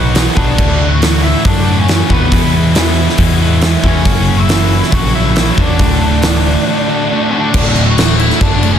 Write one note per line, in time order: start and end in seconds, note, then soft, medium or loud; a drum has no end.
0.00 0.27 B1 medium
0.00 0.14 B2 medium
0.00 0.14 F#3 medium
0.00 0.13 B3 medium
0.00 0.14 D#4 medium
0.00 0.36 D#4 medium
0.00 0.14 F#4 medium
0.00 0.15 B4 medium
0.00 0.58 B4 medium
0.14 0.37 B3 medium
0.14 0.36 D#4 medium
0.14 0.36 F#4 medium
0.14 0.35 B4 medium
0.14 snare loud
0.14 open hi-hat medium
0.36 0.55 B1 loud
0.36 0.57 B3 medium
0.36 0.87 D4 medium
0.36 0.57 D#4 medium
0.36 0.57 F#4 medium
0.36 0.56 B4 medium
0.36 0.87 D5 medium
0.36 kick medium
0.57 1.01 D2 medium
0.57 1.32 D2 loud
0.57 0.99 A2 loud
0.57 0.81 D3 loud
0.57 0.79 A3 loud
0.57 0.78 F#4 loud
0.57 kick loud
0.57 crash medium
0.79 0.99 D3 medium
0.79 1.00 A3 medium
0.79 1.00 F#4 medium
0.88 1.21 F#4 medium
0.88 1.22 F#5 medium
1.00 1.88 D2 medium
1.00 1.43 A2 medium
1.00 1.44 D3 medium
1.00 1.45 A3 medium
1.00 1.44 F#4 medium
1.00 snare loud
1.00 open hi-hat medium
1.22 1.43 E4 medium
1.22 1.45 E5 medium
1.44 1.88 D2 medium
1.44 2.01 F#2 medium
1.44 1.86 A2 loud
1.44 1.68 D3 loud
1.44 1.67 A3 medium
1.44 1.76 D4 medium
1.44 1.66 F#4 loud
1.44 1.79 D5 medium
1.44 kick loud
1.44 open hi-hat medium
1.67 1.87 D3 medium
1.67 1.88 A3 medium
1.67 1.88 F#4 medium
1.79 2.09 C#4 medium
1.79 2.12 C#5 medium
1.88 2.30 A2 medium
1.88 2.09 D3 medium
1.88 2.08 A3 medium
1.88 2.08 F#4 medium
1.88 snare loud
1.88 open hi-hat medium
2.09 2.28 D#2 medium
2.09 2.31 D3 medium
2.09 2.30 A3 medium
2.09 2.51 B3 medium
2.09 2.30 F#4 medium
2.09 2.52 B4 medium
2.09 kick medium
2.30 2.75 E2 medium
2.30 3.06 E2 loud
2.30 2.75 B2 medium
2.30 2.53 E3 medium
2.30 2.53 G#3 medium
2.30 2.52 B3 loud
2.30 2.51 E4 loud
2.30 kick loud
2.30 open hi-hat medium
2.52 2.73 E3 medium
2.52 2.74 G#3 medium
2.52 2.74 B3 medium
2.52 2.75 E4 medium
2.74 3.62 E2 medium
2.74 3.63 B2 medium
2.74 3.17 E3 medium
2.74 3.17 G#3 medium
2.74 3.18 B3 medium
2.74 3.18 E4 medium
2.74 snare loud
2.74 open hi-hat medium
3.09 snare soft
3.17 3.62 E2 medium
3.17 3.74 E2 medium
3.17 3.62 B2 loud
3.17 3.40 E3 medium
3.17 3.40 G#3 loud
3.17 3.39 B3 loud
3.17 3.38 E4 loud
3.17 kick loud
3.17 open hi-hat medium
3.39 3.60 E3 medium
3.39 3.61 G#3 medium
3.39 3.62 B3 medium
3.39 3.62 E4 medium
3.61 3.84 E3 medium
3.61 3.83 G#3 medium
3.61 3.82 B3 medium
3.61 3.81 E4 medium
3.61 snare loud
3.61 open hi-hat medium
3.83 4.02 E2 medium
3.83 4.04 E3 medium
3.83 4.05 G#3 medium
3.83 4.04 B3 medium
3.83 4.36 C#4 medium
3.83 4.04 E4 medium
3.83 4.42 C#5 medium
3.83 kick medium
4.03 4.80 F#1 loud
4.03 4.49 F#2 loud
4.03 4.49 C#3 loud
4.03 4.30 F#3 loud
4.03 4.28 A#3 medium
4.03 4.27 C#4 loud
4.03 4.27 F#4 loud
4.03 kick loud
4.03 open hi-hat medium
4.27 4.48 F#3 medium
4.27 4.49 A#3 medium
4.27 4.49 C#4 medium
4.27 4.51 F#4 medium
4.39 4.90 E4 medium
4.39 4.90 E5 medium
4.47 5.36 F#2 medium
4.47 5.36 C#3 medium
4.47 4.93 F#3 medium
4.47 4.92 A#3 medium
4.47 4.93 C#4 medium
4.47 snare loud
4.47 open hi-hat medium
4.51 4.94 F#4 medium
4.83 snare soft
4.92 5.49 A#1 medium
4.92 5.37 F#2 medium
4.92 5.37 C#3 medium
4.92 5.17 F#3 loud
4.92 5.16 A#3 medium
4.92 5.14 C#4 loud
4.92 5.14 F#4 medium
4.92 5.15 F#4 loud
4.92 5.15 F#5 loud
4.92 kick loud
4.92 open hi-hat medium
5.15 5.37 F#3 medium
5.15 5.37 A#3 medium
5.15 5.38 C#4 medium
5.15 5.56 E4 medium
5.15 5.39 F#4 medium
5.15 5.60 E5 loud
5.33 5.58 F#3 medium
5.33 snare loud
5.33 open hi-hat medium
5.37 5.59 F#3 medium
5.37 5.57 A#3 medium
5.37 5.57 C#4 medium
5.37 5.57 F#4 medium
5.58 5.77 E1 medium
5.58 5.80 F#3 medium
5.58 5.79 A#3 medium
5.58 5.79 C#4 medium
5.58 7.29 D4 medium
5.58 5.80 F#4 medium
5.58 7.29 D5 medium
5.58 kick medium
5.79 6.54 D1 loud
5.79 6.24 D2 medium
5.79 6.22 A2 loud
5.79 6.03 D3 loud
5.79 6.02 A3 loud
5.79 6.00 F#4 loud
5.79 kick loud
5.79 open hi-hat medium
6.01 6.23 D3 medium
6.01 6.23 A3 medium
6.01 6.24 F#4 medium
6.22 7.10 D2 medium
6.22 6.67 A2 medium
6.22 6.67 D3 medium
6.22 6.68 A3 medium
6.22 6.68 F#4 medium
6.22 snare loud
6.22 open hi-hat medium
6.67 7.11 D2 medium
6.67 7.11 A2 medium
6.67 6.91 D3 medium
6.67 6.90 A3 loud
6.67 6.88 F#4 loud
6.89 7.11 D3 soft
6.89 7.12 A3 medium
6.89 7.13 F#4 medium
7.12 7.54 A2 medium
7.12 7.34 D3 medium
7.12 7.33 A3 medium
7.12 7.32 F#4 medium
7.30 7.54 A3 medium
7.30 7.82 D4 medium
7.30 7.54 F#4 medium
7.30 7.69 D5 medium
7.35 7.54 D3 medium
7.54 8.29 D1 loud
7.54 7.98 D2 medium
7.54 7.97 A2 medium
7.54 7.77 D3 loud
7.54 7.76 A3 loud
7.54 7.74 F#4 loud
7.54 kick loud
7.54 crash loud
7.54 crash medium
7.69 7.82 C#5 medium
7.76 7.96 D2 medium
7.76 7.96 A2 medium
7.76 7.97 D3 medium
7.76 7.98 A3 medium
7.76 7.99 F#4 medium
7.76 crash medium
7.86 8.17 F#4 medium
7.86 8.18 F#5 medium
7.95 8.79 D2 medium
7.95 8.17 D2 medium
7.95 8.41 A2 medium
7.95 8.41 D3 medium
7.95 crash medium
7.99 8.42 A3 medium
7.99 8.43 F#4 medium
7.99 snare loud
8.18 8.39 D2 medium
8.18 8.39 A2 medium
8.18 8.40 D3 medium
8.18 8.40 E4 medium
8.18 8.40 E5 loud
8.18 crash medium
8.30 snare soft
8.41 8.79 F#1 medium
8.41 8.79 D2 medium
8.41 8.79 A2 loud
8.41 8.63 D3 loud
8.41 8.62 A3 loud
8.41 8.71 D4 medium
8.41 8.61 F#4 medium
8.41 8.72 D5 medium
8.41 kick loud
8.41 crash medium
8.63 8.79 D2 medium
8.63 8.79 A2 loud
8.63 8.79 D3 medium
8.63 8.79 A3 medium
8.63 8.79 F#4 medium
8.63 crash medium
8.72 8.79 C#4 medium
8.72 8.79 C#5 medium